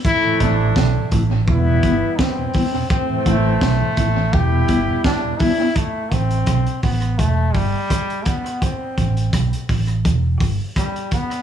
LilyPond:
<<
  \new Staff \with { instrumentName = "Trombone" } { \time 4/4 \key a \minor \tempo 4 = 84 e'8 d'4 r8 e'4 c'4 | c'8 a4. g'4 d'8 e'8 | a8 c'4 b8 a8 g4 b8 | c'4 r2 g8 b8 | }
  \new Staff \with { instrumentName = "Trombone section" } { \clef bass \time 4/4 \key a \minor <c e a>4. r8 <e g b>4. r8 | <e a c'>4. r8 <g b e'>4. r8 | r1 | r1 | }
  \new Staff \with { instrumentName = "Tonewheel organ" } { \clef bass \time 4/4 \key a \minor r16 <a, e>16 <a c' e'>16 <a, e>16 r16 <a, e>16 <a c' e'>16 <a, e>16 r16 <e, b,>16 <g b e'>16 r8 <e, b,>16 <g b e'>16 <e, b,>16 | r16 <a, e>16 <a c' e'>16 <a, e>16 r16 <a, e>16 <a c' e'>16 <a, e>16 r16 <e, b,>16 <g b e'>16 <e, b,>16 r16 <e, b,>16 <g b e'>16 <b e'>16 | r1 | r1 | }
  \new Staff \with { instrumentName = "Fingered electric bass" } { \clef bass \time 4/4 \key a \minor r8 a,,8 b,,16 r16 a,,8 e,,8 g,,16 r4 r16 | r8 a,,8 b,,16 r16 a,,8 e,,8 g,,16 r4 r16 | r8 a,,8 b,,16 r16 a,,8 e,,8 g,,16 r4 r16 | r8 a,,8 b,,16 r16 a,,8 e,,8 g,,16 r4 r16 | }
  \new DrumStaff \with { instrumentName = "Drums" } \drummode { \time 4/4 <hhp bd>8 <hh bd>8 <bd sn>8 <hh bd>8 bd8 <hh bd>8 <bd sn>8 <hho bd>8 | <hhp bd>8 <hh bd>8 <bd sn>8 <hh bd>8 bd8 <hh bd>8 <bd sn>8 <hho bd>8 | <hh bd>8 <hh bd>16 hh16 <hh bd ss>16 hh16 <hho bd>16 hh16 <hh bd>8 <hho bd>8 <hh bd ss>16 hh16 <hh bd>16 hh16 | <hh bd>8 <hh bd>16 hh16 <hh bd ss>16 hh16 <hho bd>16 hh16 <hh bd>8 <hho bd>8 <hh bd ss>16 hh16 <hh bd>16 hh16 | }
>>